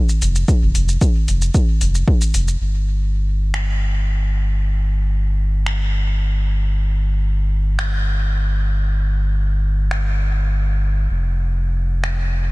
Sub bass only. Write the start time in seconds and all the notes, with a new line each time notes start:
0.22 F1
0.62 F1
0.75 F1
1.28 F1
1.81 F1
2.34 F1
2.61 G1
11.10 F1